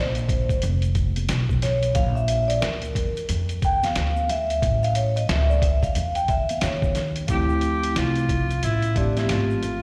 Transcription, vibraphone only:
0.00 0.59 C5 medium
1.63 1.97 C#5 loud
1.95 2.17 F5 loud
2.15 2.50 E5 loud
2.48 2.62 D5 loud
2.61 3.24 A#4 medium
3.65 3.85 G5 loud
3.84 4.31 F5 loud
4.30 4.85 E5 loud
4.83 4.95 F5 loud
4.96 5.15 C#5 medium
5.16 5.29 D#5 medium
5.29 5.50 E5 loud
5.49 5.63 D5 medium
5.62 5.71 E5 medium
5.82 6.17 F5 medium
6.16 6.29 G5 medium
6.29 6.48 E5 loud
6.50 6.55 F5 medium
6.62 7.25 C#5 medium
7.27 8.26 F3 medium
7.27 8.26 A3 medium
7.27 8.26 C4 medium
7.27 8.27 E4 medium
8.95 9.69 F3 medium
8.95 9.69 A3 medium
8.95 9.70 C4 medium
8.95 9.70 G4 medium

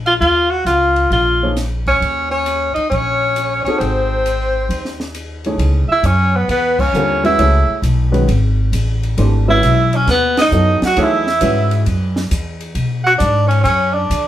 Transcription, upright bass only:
0.00 0.17 A#1 medium
0.21 0.63 D#2 medium
0.65 1.07 C#2 medium
1.10 1.96 A#1 medium
2.01 2.71 D#2 medium
2.77 muted upright bass stroke soft
2.91 3.62 A#1 medium
3.66 muted upright bass stroke soft
3.80 4.66 G#1 medium
4.69 5.55 D#2 medium
5.58 5.86 C#2 medium
5.88 muted upright bass stroke soft
6.03 6.47 F#2 medium
6.48 6.92 E2 medium
6.93 7.37 D#2 medium
7.39 7.66 C#2 medium
7.68 muted upright bass stroke soft
7.82 8.26 B1 medium
8.28 8.71 G#1 medium
8.72 9.16 A1 medium
9.18 9.61 G#1 medium
9.62 10.06 B1 medium
10.07 10.50 D#2 medium
10.52 10.80 F#2 medium
10.82 muted upright bass stroke soft
10.97 11.40 E2 medium
11.41 11.85 G#2 loud
11.87 12.30 F#2 medium
12.31 12.74 E2 medium
12.75 13.19 B2 medium
13.20 13.64 G#2 medium
13.64 14.08 F#2 medium
14.10 14.28 E2 medium

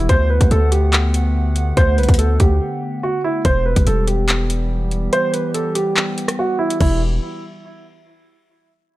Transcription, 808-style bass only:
0.09 0.39 D2 loud
0.41 0.51 D2 loud
0.51 1.73 D2 loud
1.77 2.00 D2 loud
1.98 2.08 C2 loud
2.09 2.39 D2 loud
2.40 2.60 D2 loud
3.45 3.75 E1 loud
3.76 3.86 E1 loud
3.87 5.09 E1 loud
6.81 7.20 E1 loud

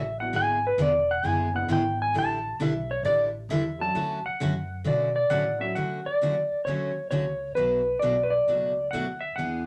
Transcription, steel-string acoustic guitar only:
0.33 0.57 D3 medium
0.33 0.57 G#3 medium
0.33 0.57 B3 medium
0.33 0.57 E4 medium
0.33 0.57 G#4 medium
0.78 0.91 D3 medium
0.78 0.91 G#3 medium
0.78 0.91 B3 medium
0.78 0.91 E4 medium
0.78 0.91 G#4 medium
1.23 1.47 D3 medium
1.23 1.47 G#3 medium
1.23 1.48 B3 medium
1.23 1.48 E4 medium
1.23 1.48 G#4 medium
1.68 1.81 D3 medium
1.68 1.81 G#3 medium
1.68 1.82 B3 medium
1.68 1.82 E4 medium
1.68 1.82 G#4 medium
2.14 2.37 D3 medium
2.14 2.38 G3 medium
2.14 2.38 D4 medium
2.14 2.38 E4 medium
2.14 2.38 A4 medium
2.60 2.72 D3 medium
2.60 2.72 G3 medium
2.60 2.72 D4 medium
2.60 2.72 E4 medium
2.60 2.72 A4 medium
3.05 3.28 D3 medium
3.05 3.28 G3 medium
3.05 3.28 D4 medium
3.05 3.28 E4 medium
3.05 3.28 A4 medium
3.50 3.62 D3 medium
3.50 3.62 G3 medium
3.50 3.62 D4 medium
3.50 3.63 E4 medium
3.50 3.63 A4 medium
3.95 4.18 D3 medium
3.95 4.18 F#3 medium
3.95 4.18 A3 medium
3.95 4.18 C#4 medium
3.95 4.19 F#4 medium
4.40 4.52 D3 medium
4.40 4.53 F#3 medium
4.40 4.53 A3 medium
4.40 4.53 C#4 medium
4.40 4.53 F#4 medium
4.84 5.08 D3 medium
4.84 5.08 F#3 medium
4.84 5.08 A3 medium
4.84 5.08 C#4 medium
4.84 5.09 F#4 medium
5.30 5.42 D3 medium
5.30 5.42 F#3 medium
5.30 5.43 A3 medium
5.30 5.43 C#4 loud
5.30 5.43 F#4 medium
5.76 5.99 D3 medium
5.76 5.99 F#3 medium
5.76 5.99 A3 medium
5.76 5.99 C#4 medium
5.76 5.99 F#4 medium
6.21 6.33 D3 medium
6.21 6.34 F#3 medium
6.21 6.34 A3 medium
6.21 6.34 C#4 medium
6.21 6.34 F#4 medium
6.67 6.90 D3 medium
6.67 6.90 F#3 medium
6.67 6.90 A3 medium
6.67 6.90 C#4 medium
6.67 6.90 F#4 medium
7.11 7.23 D3 medium
7.11 7.24 F#3 medium
7.11 7.24 A3 medium
7.11 7.24 C#4 medium
7.11 7.24 F#4 medium
7.56 7.80 B2 medium
7.56 7.80 F#3 medium
7.56 7.80 A3 medium
7.56 7.80 D4 medium
7.56 7.80 F#4 medium
8.02 8.14 B2 medium
8.02 8.14 F#3 medium
8.02 8.15 A3 medium
8.02 8.15 D4 medium
8.02 8.15 F#4 medium
8.48 8.71 B2 medium
8.48 8.71 F#3 medium
8.48 8.71 A3 medium
8.48 8.71 D4 medium
8.48 8.71 F#4 medium
8.93 9.05 B2 medium
8.93 9.05 F#3 medium
8.93 9.05 A3 medium
8.93 9.06 D4 medium
8.93 9.06 F#4 medium
9.38 9.61 E3 medium
9.38 9.61 B3 medium
9.38 9.61 D4 medium
9.38 9.62 G#4 medium

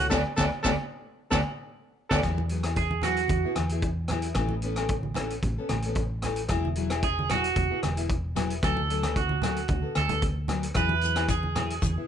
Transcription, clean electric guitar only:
0.11 0.20 B4 loud
0.11 0.21 D5 loud
0.11 0.20 F#5 medium
0.38 0.47 B4 loud
0.38 0.47 D5 loud
0.38 0.47 F#5 medium
0.64 0.73 B4 medium
0.64 0.73 D5 medium
0.64 0.73 F#5 medium
1.31 1.40 B4 medium
1.31 1.40 D5 medium
1.31 1.40 F#5 medium
2.11 2.19 B4 medium
2.11 2.19 D5 loud
2.11 2.19 F#5 medium
2.77 3.03 G#4 medium
3.03 3.53 F#4 medium
7.04 7.29 G#4 medium
7.31 7.80 F#4 medium
8.64 9.13 A4 medium
9.17 9.93 F#4 medium
9.97 10.22 A4 medium
10.77 11.26 B4 loud
11.30 12.06 G#4 medium

